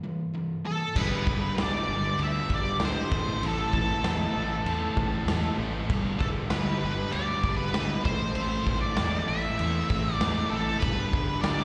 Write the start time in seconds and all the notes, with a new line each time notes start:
0.04 G2 E3
0.35 G2 E3
0.65 G2 E3 A4
0.95 G1 G2 D3 G3 B3 D4 G4 B4, kick, crash
1.27 G1 G2 D3 G3 B3 D4 G4, kick
1.57 D2 G2 D3 G3 B3 D4 G4, snare, crash
1.61 D5
1.87 G1 G2 D3 G3 B3 D4 G4
2.18 D2 G2 D3 G3 B3 D4 G4, crash
2.23 E5
2.49 G1 G2 D3 G3 B3 D4 G4, kick
2.54 D5
2.79 D2 G2 D3 G3 B3 D4 G4, snare, crash
2.85 C5
3.11 A1 A2 E3 A3 C4 E4 A4, kick
3.40 A1 A2 E3 A3 C4 E4 A4, crash
3.46 A4
3.72 A1 A2 E3 A3 C4 E4 A4, kick
4.04 E2 A2 E3 A3 C4 E4 A4, snare, crash
4.35 A1 A2 E3 A3 C4 E4 A4
4.65 E2 A2 E3 A3 C4 E4 A4, crash
4.97 A1 A2 E3 A3 C4 E4 A4, kick
5.26 E2 A2 E3 A3 C4 E4 A4, snare, crash
5.58 A1 A2 E3 A3 C4 E4 A4
5.89 G1 G2 D3 G3 B3 D4 G4, kick, crash
6.19 G1 G2 D3 G3 B3 D4 G4 A4, kick
6.49 D2 G2 D3 G3 B3 D4 G4 B4, snare, crash
6.79 G1 G2 D3 G3 B3 D4 B4
6.84 G4
7.12 D2 G2 D3 G3 B3 D4 G4 D5, crash
7.44 G1 G2 D3 G3 B3 D4 G4, kick
7.56 B4
7.74 D2 G2 D3 G3 B3 D4 G4, snare, crash
8.04 A1 A2 E3 A3 C4 E4 A4 C5, kick
8.35 A1 A2 E3 A3 C4 E4 A4, crash
8.66 A1 A2 E3 A3 C4 E4 A4, kick
8.81 D5
8.97 E2 A2 E3 A3 C4 E4 A4, snare, crash
9.28 A1 A2 E3 A3 C4 E4 A4 E5
9.58 E2 A2 E3 A3 C4 E4 A4, crash
9.89 A1 A2 E3 A3 C4 E4 A4, kick
10.06 snare
10.15 D5
10.20 E2 A2 E3 A3 C4 E4 A4, snare, crash
10.50 A1 A2 E3 A3 C4 E4 A4
10.80 G1 G2 D3 G3 B3 B4, kick, crash
10.84 D4 G4
11.13 G1 G2 D3 G3 B3 D4 G4, kick
11.41 D2 G2 D3 D5, snare, crash
11.45 G3 B3 D4 G4